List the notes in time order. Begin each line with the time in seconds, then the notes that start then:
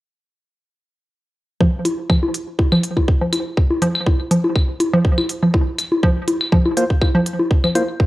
1.61 F3, kick
1.85 open hi-hat, low bongo
2.10 F3, kick, claves
2.23 low bongo
2.34 open hi-hat
2.59 kick, low bongo
2.72 F3, claves
2.83 open hi-hat
2.97 kick, low bongo
3.08 kick
3.21 F3
3.33 open hi-hat, low bongo, claves
3.57 kick
3.70 low bongo
3.82 F3, open hi-hat
3.95 claves
4.06 kick, low bongo
4.31 F3, open hi-hat
4.44 low bongo
4.56 kick, claves
4.80 open hi-hat, low bongo
4.93 F3
5.05 kick
5.18 low bongo, claves
5.29 open hi-hat
5.43 F3
5.54 kick, low bongo
5.79 open hi-hat, claves
5.92 low bongo
6.03 F3, kick
6.28 open hi-hat, low bongo
6.41 claves
6.52 F3, kick
6.66 low bongo
6.77 A#3 F4 C5, open hi-hat
6.90 kick
7.01 kick, low bongo, claves
7.15 F3
7.26 open hi-hat
7.39 low bongo
7.51 kick
7.64 F3, claves
7.75 A#3 F4 C5, open hi-hat, low bongo
8.00 kick